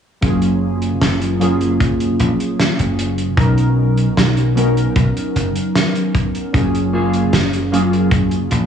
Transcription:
0.21 slap bass F#1, synth keys F#3 A#3 C#4 F4 G#4, kick, closed hi-hat
0.42 closed hi-hat
0.82 closed hi-hat
1.01 slap bass F#1, snare, closed hi-hat
1.21 closed hi-hat
1.40 synth keys F#3 A#3 C#4 F4 G#4, closed hi-hat
1.61 closed hi-hat
1.80 kick, closed hi-hat
2.00 closed hi-hat
2.20 slap bass A#1, closed hi-hat
2.40 closed hi-hat
2.60 snare, closed hi-hat
2.79 slap bass F#1, closed hi-hat
2.99 closed hi-hat
3.18 closed hi-hat
3.37 slap bass B1, synth keys F#3 B3 C#4 D#4 A#4, kick, closed hi-hat
3.58 closed hi-hat
3.97 closed hi-hat
4.17 slap bass B1, snare, closed hi-hat
4.37 closed hi-hat
4.55 synth keys F#3 B3 C#4 D#4 A#4, closed hi-hat
4.77 closed hi-hat
4.96 slap bass B1, kick, closed hi-hat
5.17 closed hi-hat
5.36 slap bass F#1, closed hi-hat
5.55 closed hi-hat
5.75 snare, closed hi-hat
5.95 closed hi-hat
6.15 kick, closed hi-hat
6.35 closed hi-hat
6.53 slap bass F#1, synth keys F#3 A#3 C#4 F4 G#4, kick, closed hi-hat
6.75 closed hi-hat
6.93 clean electric guitar A#3 F4 G#4
7.13 closed hi-hat
7.33 slap bass F#1, snare, closed hi-hat
7.53 closed hi-hat
7.71 synth keys F#3 A#3 C#4 F4 G#4, clean electric guitar A#3 F4 G#4, closed hi-hat
7.93 closed hi-hat
8.11 kick, closed hi-hat
8.31 closed hi-hat
8.51 slap bass A#1, muted clean electric guitar stroke, closed hi-hat

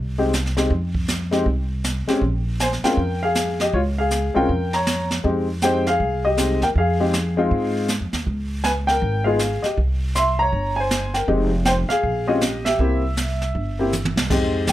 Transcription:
Already playing: upright bass C2
0.18 upright piano G#3 C4 D#4 G4
0.33 snare, hi-hat pedal
0.46 snare
0.57 upright piano G#3 C4 D#4 G4, snare
0.70 upright bass F2, brush sweep, kick
0.95 kick
1.08 snare, hi-hat pedal
1.31 upright piano G#3 C4 D#4 G4, snare
1.46 upright bass C2, brush sweep, kick
1.84 snare, hi-hat pedal
2.08 upright piano G#3 C4 C#4 G4, muted upright bass stroke, snare
2.21 upright bass A#1, brush sweep, kick
2.60 upright piano C5 G#5, snare, hi-hat pedal
2.73 snare
2.83 upright piano G#3 C4 C#4 F4 A#4 G5, muted upright bass stroke, snare
2.97 upright bass F2, brush sweep, kick
3.23 upright piano G#4 F5
3.35 snare, hi-hat pedal
3.60 upright piano G4 D#5, snare
3.73 upright bass C#2, upright piano F4 C#5, brush sweep, kick
3.98 upright piano G#4 F5
4.11 snare, hi-hat pedal
4.34 upright bass C2, upright piano G#3 C4 C#4 F4 A#4 G5
4.49 upright bass F2, brush sweep, kick
4.73 upright piano C#5 A#5, snare
4.86 snare, hi-hat pedal
5.11 snare
5.24 upright bass F2, upright piano G#3 C4 D#4 G4, brush sweep, kick
5.62 upright piano G#3 C4 D#4 G4 C5 G5, snare, hi-hat pedal
5.87 upright piano G#4 F5, snare
6.00 upright bass C2, brush sweep, kick
6.25 upright piano G4 D#5
6.37 upright piano G#3 C4 D#4 G4, snare, hi-hat pedal
6.61 upright bass D#2, upright piano A#4 G5, snare
6.76 upright bass F2, upright piano G#4 F5, brush sweep, kick
7.00 upright piano G#3 C4 D#4 G4
7.13 snare, hi-hat pedal
7.37 upright piano G#3 C4 D#4 F4
7.51 upright bass G#2, brush sweep, kick
7.88 snare, hi-hat pedal
8.01 upright bass F2
8.13 upright bass D#2, snare
8.27 upright bass C#2, brush sweep, kick
8.64 upright piano B4 G#5, snare, hi-hat pedal
8.87 upright piano A#4 G5, snare
9.02 upright bass G#1, brush sweep, kick
9.24 upright piano G#3 B3 D#4 F4 G#4 F5
9.39 snare, hi-hat pedal
9.62 upright piano G4 D#5, muted upright bass stroke, snare
9.77 upright bass C2, brush sweep, kick
10.15 upright piano E5 C6, snare, hi-hat pedal
10.39 upright piano C#5 A#5
10.52 upright bass G1, brush sweep, kick
10.76 upright piano C5 G#5
10.90 snare, hi-hat pedal
11.14 upright piano A#4 G5, snare
11.28 upright bass F1, upright piano G#3 C4 D#4 G4, brush sweep, kick
11.65 upright piano C5 G5, snare, hi-hat pedal
11.89 upright piano G#4 F5, muted upright bass stroke, snare
12.03 upright bass A#1, brush sweep, kick
12.27 upright piano G#3 C4 C#4 F4 G4 D#5
12.41 snare, hi-hat pedal
12.65 upright piano G4 E5, snare
12.79 upright bass C2, upright piano A#3 C4 E4 G4, brush sweep, kick
13.17 snare, hi-hat pedal
13.41 snare
13.55 upright bass G1, brush sweep, kick
13.79 upright piano A#3 C4 E4 G4
13.93 hi-hat pedal, mid tom
14.05 mid tom
14.16 upright bass C2, snare
14.30 upright bass F2, upright piano G#3 C4 D#4 G4, brush sweep, kick, snare, crash
14.67 upright bass C#2, upright piano G5, kick, snare, hi-hat pedal

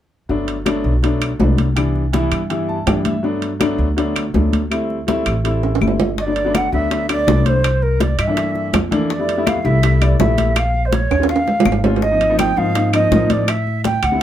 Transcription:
0.29 upright bass G1, grand piano F#3 A3 B3 D4, high conga
0.48 high conga, high timbale
0.66 grand piano F#3 A3 B3 D4, high conga, high timbale, low timbale, claves
0.84 upright bass B1, high conga
1.03 grand piano F#3 A3 B3 D4, high conga, high timbale
1.21 high conga, high timbale, claves
1.39 upright bass C2, grand piano F#3 A3 B3 D4, high conga, low timbale
1.58 high conga, high timbale
1.76 grand piano E3 G3 B3 D4, high conga, high timbale, claves
1.96 high conga
2.13 grand piano E3 G3 B3 E4, high conga, high timbale, low timbale
2.31 upright bass G2, high conga, high timbale, claves
2.50 grand piano E3 G3 B3 E4, high conga, high timbale
2.68 grand piano A5, high conga
2.86 upright bass G2, grand piano E3 G3 B3 D4 G5, high conga, high timbale, low timbale, claves
3.05 grand piano E5, high conga, high timbale
3.23 grand piano F#3 A3 B3 D4, high conga
3.42 high conga, high timbale
3.60 grand piano F#3 A3 B3 D4, high conga, high timbale, low timbale, claves
3.78 upright bass D2, high conga
3.97 grand piano F#3 A3 B3 D4, high conga, high timbale
4.16 high conga, high timbale, claves
4.34 upright bass D2, grand piano F#3 A3 B3 D4, high conga, low timbale
4.53 high conga, high timbale
4.70 grand piano G3 A3 C4 E4, high conga, high timbale, claves
4.90 high conga
5.07 grand piano G3 A3 C4 E4, high conga, high timbale, low timbale
5.26 upright bass A1, high conga, high timbale, claves
5.44 grand piano G3 A3 C4 E4, high conga, high timbale
5.63 high conga, high timbale
5.75 high timbale
5.81 upright bass G1, grand piano G3 A3 C4 E4, high conga, claves
5.88 low timbale
6.00 high conga, low timbale
6.18 flute D5, bansuri D#5, high bongo, high conga
6.24 grand piano F#3 A3 B3 D4, bansuri D5
6.36 high conga, high timbale
6.45 grand piano F#3 A3 B3 D4
6.54 flute F#5, bansuri F#5, high bongo, high conga, high timbale, low timbale, claves
6.72 upright bass D2, grand piano F#3 A3 B3 D4, flute E5, bansuri E5, high bongo, high conga
6.90 grand piano F#3 A3 B3 D4, high bongo, high conga, high timbale
7.09 grand piano F#3 A3 B3 D4, flute D5, bansuri D5, high bongo, high conga, high timbale, claves
7.27 upright bass C2, grand piano F#3 A3 B3 D4, high bongo, low bongo, high conga, low timbale
7.46 flute C5, bansuri C#5, high bongo, high conga, high timbale
7.50 bansuri C5
7.64 high bongo, high timbale, claves
7.82 flute A#4, bansuri A#4, high conga
8.00 flute D5, bansuri D5, high bongo, high conga, high timbale, low timbale
8.18 upright bass G2, bansuri D#5, flute E5, high bongo, high conga, high timbale, claves
8.27 grand piano E3 A3 A#3 D4, bansuri E5
8.37 high bongo, high conga, high timbale
8.55 high bongo, high conga
8.73 upright bass F2, high bongo, low bongo, high conga, high timbale, low timbale, claves
8.91 grand piano E3 A3 A#3 D4, high bongo, high conga, high timbale
9.10 flute D5, bansuri D5, high bongo, high conga
9.19 grand piano G3 A3 B3 E4
9.29 high conga, high timbale
9.37 grand piano G3 A3 B3 E4
9.46 flute F5, bansuri F5, high bongo, high conga, high timbale, low timbale, claves
9.64 upright bass C2, grand piano G3 A3 B3 E4, flute E5, bansuri E5, high bongo, high conga
9.82 grand piano G3 A3 B3 E4, high bongo, high conga, high timbale
10.00 grand piano G3 A3 B3 E4, flute D5, bansuri D5, high bongo, high conga, high timbale, claves
10.19 upright bass A#1, grand piano G3 A3 B3 E4, flute E5, bansuri E5, high bongo, low bongo, high conga, low timbale
10.38 high bongo, high conga, high timbale
10.56 flute F5, bansuri F5, high bongo, high conga, high timbale, claves
10.74 high conga
10.85 flute C5, bansuri C5
10.92 flute C#5, bansuri C#5, high bongo, high conga, high timbale, low timbale
11.11 upright bass D#2, high bongo, high conga, high timbale, claves
11.20 grand piano G#3 C4 C#4 F4, high timbale
11.29 flute F5, bansuri F5, high bongo, high conga
11.36 high timbale
11.47 high bongo, high conga, low timbale
11.60 low timbale
11.65 upright bass G#1, high bongo, low bongo, high conga, claves
11.72 low timbale
11.84 grand piano G3 C4 C#4 F4, high bongo, high conga, low timbale
11.96 low timbale
12.02 flute D#5, bansuri D#5, high bongo, high conga
12.10 grand piano F3 A#3 C4 D#4
12.21 high conga, high timbale
12.29 grand piano F3 A#3 C4 D#4
12.39 flute G5, bansuri G5, high bongo, high conga, high timbale, low timbale, claves
12.56 upright bass G#2, grand piano F3 A#3 C4 D#4, flute F5, bansuri F5, high bongo, high conga
12.75 grand piano F3 A#3 C4 D#4, high bongo, high conga, high timbale
12.93 grand piano F3 A#3 C4 D#4, flute D#5, bansuri D#5, high bongo, high conga, high timbale, claves
13.11 upright bass A2, grand piano F3 C4 D#4 A#4, high bongo, low bongo, high conga, low timbale
13.30 flute D5, bansuri D5, high bongo, high conga, high timbale
13.48 flute E5, bansuri E5, high bongo, high conga, high timbale, claves
13.67 high conga
13.84 flute G5, bansuri G5, high bongo, high conga, high timbale, low timbale
14.03 upright bass D2, flute F#5, bansuri F#5, high bongo, high conga, high timbale, claves
14.11 grand piano G3 B3 C4 E4

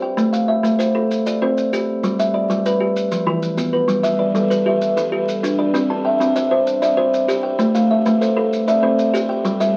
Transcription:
Already playing: kalimba G4
0.02 kalimba G5
0.17 kalimba A3, maracas
0.33 kalimba F5, maracas
0.48 kalimba E5
0.63 kalimba A3, maracas
0.79 kalimba C5, maracas
0.95 kalimba A4
1.11 maracas
1.26 kalimba D5, maracas
1.42 kalimba C4 C5
1.58 maracas
1.73 kalimba G4, maracas
2.03 kalimba G3, maracas
2.19 kalimba E5, maracas
2.34 kalimba D5
2.50 kalimba G3, maracas
2.66 kalimba B4, maracas
2.80 kalimba G4
2.96 maracas
3.12 kalimba F3, maracas
3.27 kalimba E3 E4
3.43 maracas
3.57 kalimba B3, maracas
3.73 kalimba B4
3.88 kalimba G3, maracas
4.03 kalimba G3 E5, maracas
4.19 kalimba B4 D5
4.35 kalimba G3 A4, maracas
4.50 kalimba G4 B4, maracas
4.66 kalimba G4 E5
4.82 maracas
4.96 kalimba G3 A4 B4, maracas
5.12 kalimba G4
5.28 maracas
5.43 kalimba D4, maracas
5.59 kalimba D5
5.74 kalimba C4 G4, maracas
5.89 kalimba C4 A5
6.05 kalimba E5 G5
6.20 kalimba C4 D5, maracas
6.36 kalimba C5 E5, maracas
6.51 kalimba C5 A5
6.67 maracas
6.82 kalimba C4 D5 E5, maracas
6.97 kalimba C5
7.14 maracas
7.28 kalimba G4, maracas
7.43 kalimba G5
7.59 kalimba A3 C5, maracas
7.74 kalimba A3 F5, maracas
7.91 kalimba E5
8.05 kalimba A3 B4, maracas
8.21 kalimba A4 C5, maracas
8.36 kalimba A4 F5
8.53 maracas
8.68 kalimba C4 D5 E5, maracas
8.83 kalimba C4 C5
8.99 maracas
9.14 kalimba G4, maracas
9.29 kalimba G5
9.45 kalimba G3 C5, maracas
9.60 kalimba G3 E5, maracas

